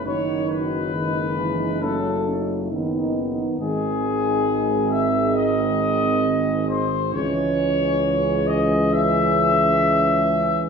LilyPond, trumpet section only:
\new Staff \with { instrumentName = "Trumpet section" } { \time 4/4 \key cis \minor \tempo 4 = 67 cis''8 b'4. a'8 r4. | gis'4. e''8 dis''4. bis'8 | cis''4. dis''8 e''2 | }